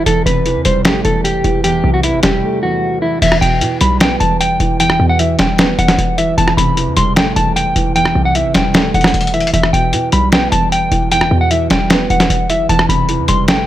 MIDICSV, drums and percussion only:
0, 0, Header, 1, 2, 480
1, 0, Start_track
1, 0, Key_signature, 1, "minor"
1, 0, Tempo, 394737
1, 75, Time_signature, 4, 2, 24, 8
1, 16620, End_track
2, 0, Start_track
2, 0, Title_t, "Drums"
2, 77, Note_on_c, 9, 42, 83
2, 199, Note_off_c, 9, 42, 0
2, 323, Note_on_c, 9, 42, 76
2, 445, Note_off_c, 9, 42, 0
2, 555, Note_on_c, 9, 42, 74
2, 676, Note_off_c, 9, 42, 0
2, 790, Note_on_c, 9, 42, 79
2, 911, Note_off_c, 9, 42, 0
2, 1030, Note_on_c, 9, 42, 75
2, 1037, Note_on_c, 9, 38, 113
2, 1152, Note_off_c, 9, 42, 0
2, 1158, Note_off_c, 9, 38, 0
2, 1273, Note_on_c, 9, 42, 82
2, 1395, Note_off_c, 9, 42, 0
2, 1519, Note_on_c, 9, 42, 78
2, 1641, Note_off_c, 9, 42, 0
2, 1755, Note_on_c, 9, 42, 65
2, 1877, Note_off_c, 9, 42, 0
2, 1996, Note_on_c, 9, 42, 81
2, 2118, Note_off_c, 9, 42, 0
2, 2473, Note_on_c, 9, 42, 73
2, 2595, Note_off_c, 9, 42, 0
2, 2709, Note_on_c, 9, 42, 82
2, 2715, Note_on_c, 9, 38, 101
2, 2830, Note_off_c, 9, 42, 0
2, 2837, Note_off_c, 9, 38, 0
2, 3915, Note_on_c, 9, 49, 105
2, 3916, Note_on_c, 9, 42, 79
2, 4035, Note_on_c, 9, 37, 94
2, 4037, Note_off_c, 9, 49, 0
2, 4038, Note_off_c, 9, 42, 0
2, 4156, Note_off_c, 9, 37, 0
2, 4163, Note_on_c, 9, 42, 76
2, 4284, Note_off_c, 9, 42, 0
2, 4394, Note_on_c, 9, 42, 75
2, 4516, Note_off_c, 9, 42, 0
2, 4629, Note_on_c, 9, 42, 82
2, 4751, Note_off_c, 9, 42, 0
2, 4869, Note_on_c, 9, 42, 79
2, 4876, Note_on_c, 9, 38, 117
2, 4991, Note_off_c, 9, 42, 0
2, 4998, Note_off_c, 9, 38, 0
2, 5113, Note_on_c, 9, 42, 83
2, 5235, Note_off_c, 9, 42, 0
2, 5358, Note_on_c, 9, 42, 82
2, 5480, Note_off_c, 9, 42, 0
2, 5594, Note_on_c, 9, 42, 68
2, 5716, Note_off_c, 9, 42, 0
2, 5836, Note_on_c, 9, 42, 84
2, 5955, Note_on_c, 9, 37, 89
2, 5957, Note_off_c, 9, 42, 0
2, 6076, Note_off_c, 9, 37, 0
2, 6313, Note_on_c, 9, 42, 78
2, 6435, Note_off_c, 9, 42, 0
2, 6550, Note_on_c, 9, 42, 85
2, 6556, Note_on_c, 9, 38, 102
2, 6671, Note_off_c, 9, 42, 0
2, 6678, Note_off_c, 9, 38, 0
2, 6790, Note_on_c, 9, 42, 78
2, 6797, Note_on_c, 9, 38, 116
2, 6912, Note_off_c, 9, 42, 0
2, 6918, Note_off_c, 9, 38, 0
2, 7036, Note_on_c, 9, 42, 66
2, 7155, Note_off_c, 9, 42, 0
2, 7155, Note_on_c, 9, 38, 73
2, 7155, Note_on_c, 9, 42, 65
2, 7277, Note_off_c, 9, 38, 0
2, 7277, Note_off_c, 9, 42, 0
2, 7279, Note_on_c, 9, 42, 80
2, 7401, Note_off_c, 9, 42, 0
2, 7516, Note_on_c, 9, 42, 70
2, 7637, Note_off_c, 9, 42, 0
2, 7757, Note_on_c, 9, 42, 82
2, 7875, Note_on_c, 9, 37, 92
2, 7879, Note_off_c, 9, 42, 0
2, 7997, Note_off_c, 9, 37, 0
2, 8003, Note_on_c, 9, 42, 79
2, 8125, Note_off_c, 9, 42, 0
2, 8235, Note_on_c, 9, 42, 74
2, 8357, Note_off_c, 9, 42, 0
2, 8470, Note_on_c, 9, 42, 83
2, 8592, Note_off_c, 9, 42, 0
2, 8711, Note_on_c, 9, 42, 77
2, 8717, Note_on_c, 9, 38, 119
2, 8832, Note_off_c, 9, 42, 0
2, 8839, Note_off_c, 9, 38, 0
2, 8954, Note_on_c, 9, 42, 86
2, 9076, Note_off_c, 9, 42, 0
2, 9199, Note_on_c, 9, 42, 80
2, 9320, Note_off_c, 9, 42, 0
2, 9434, Note_on_c, 9, 42, 69
2, 9556, Note_off_c, 9, 42, 0
2, 9676, Note_on_c, 9, 42, 81
2, 9795, Note_on_c, 9, 37, 90
2, 9798, Note_off_c, 9, 42, 0
2, 9916, Note_off_c, 9, 37, 0
2, 10154, Note_on_c, 9, 42, 78
2, 10276, Note_off_c, 9, 42, 0
2, 10390, Note_on_c, 9, 42, 80
2, 10396, Note_on_c, 9, 38, 101
2, 10511, Note_off_c, 9, 42, 0
2, 10518, Note_off_c, 9, 38, 0
2, 10630, Note_on_c, 9, 42, 79
2, 10636, Note_on_c, 9, 38, 117
2, 10752, Note_off_c, 9, 42, 0
2, 10758, Note_off_c, 9, 38, 0
2, 10876, Note_on_c, 9, 42, 49
2, 10956, Note_off_c, 9, 42, 0
2, 10956, Note_on_c, 9, 42, 54
2, 10996, Note_on_c, 9, 37, 101
2, 10996, Note_on_c, 9, 38, 73
2, 11036, Note_off_c, 9, 42, 0
2, 11036, Note_on_c, 9, 42, 63
2, 11115, Note_off_c, 9, 42, 0
2, 11115, Note_on_c, 9, 42, 70
2, 11118, Note_off_c, 9, 37, 0
2, 11118, Note_off_c, 9, 38, 0
2, 11195, Note_off_c, 9, 42, 0
2, 11195, Note_on_c, 9, 42, 76
2, 11275, Note_off_c, 9, 42, 0
2, 11275, Note_on_c, 9, 42, 82
2, 11355, Note_on_c, 9, 46, 73
2, 11356, Note_off_c, 9, 42, 0
2, 11356, Note_on_c, 9, 42, 43
2, 11436, Note_off_c, 9, 42, 0
2, 11436, Note_on_c, 9, 42, 58
2, 11476, Note_off_c, 9, 46, 0
2, 11516, Note_off_c, 9, 42, 0
2, 11516, Note_on_c, 9, 42, 71
2, 11597, Note_off_c, 9, 42, 0
2, 11597, Note_on_c, 9, 42, 83
2, 11716, Note_on_c, 9, 37, 93
2, 11718, Note_off_c, 9, 42, 0
2, 11837, Note_off_c, 9, 37, 0
2, 11843, Note_on_c, 9, 42, 78
2, 11965, Note_off_c, 9, 42, 0
2, 12074, Note_on_c, 9, 42, 77
2, 12196, Note_off_c, 9, 42, 0
2, 12309, Note_on_c, 9, 42, 82
2, 12431, Note_off_c, 9, 42, 0
2, 12549, Note_on_c, 9, 42, 79
2, 12556, Note_on_c, 9, 38, 112
2, 12671, Note_off_c, 9, 42, 0
2, 12678, Note_off_c, 9, 38, 0
2, 12793, Note_on_c, 9, 42, 84
2, 12915, Note_off_c, 9, 42, 0
2, 13038, Note_on_c, 9, 42, 80
2, 13159, Note_off_c, 9, 42, 0
2, 13274, Note_on_c, 9, 42, 71
2, 13396, Note_off_c, 9, 42, 0
2, 13516, Note_on_c, 9, 42, 83
2, 13634, Note_on_c, 9, 37, 94
2, 13638, Note_off_c, 9, 42, 0
2, 13756, Note_off_c, 9, 37, 0
2, 13993, Note_on_c, 9, 42, 75
2, 14115, Note_off_c, 9, 42, 0
2, 14230, Note_on_c, 9, 42, 84
2, 14236, Note_on_c, 9, 38, 101
2, 14351, Note_off_c, 9, 42, 0
2, 14357, Note_off_c, 9, 38, 0
2, 14470, Note_on_c, 9, 42, 78
2, 14477, Note_on_c, 9, 38, 114
2, 14592, Note_off_c, 9, 42, 0
2, 14598, Note_off_c, 9, 38, 0
2, 14716, Note_on_c, 9, 42, 67
2, 14836, Note_off_c, 9, 42, 0
2, 14836, Note_on_c, 9, 38, 73
2, 14836, Note_on_c, 9, 42, 67
2, 14958, Note_off_c, 9, 38, 0
2, 14958, Note_off_c, 9, 42, 0
2, 14959, Note_on_c, 9, 42, 82
2, 15081, Note_off_c, 9, 42, 0
2, 15195, Note_on_c, 9, 42, 70
2, 15317, Note_off_c, 9, 42, 0
2, 15436, Note_on_c, 9, 42, 84
2, 15554, Note_on_c, 9, 37, 93
2, 15558, Note_off_c, 9, 42, 0
2, 15676, Note_off_c, 9, 37, 0
2, 15683, Note_on_c, 9, 42, 77
2, 15804, Note_off_c, 9, 42, 0
2, 15914, Note_on_c, 9, 42, 78
2, 16035, Note_off_c, 9, 42, 0
2, 16150, Note_on_c, 9, 42, 82
2, 16272, Note_off_c, 9, 42, 0
2, 16390, Note_on_c, 9, 42, 80
2, 16397, Note_on_c, 9, 38, 112
2, 16512, Note_off_c, 9, 42, 0
2, 16518, Note_off_c, 9, 38, 0
2, 16620, End_track
0, 0, End_of_file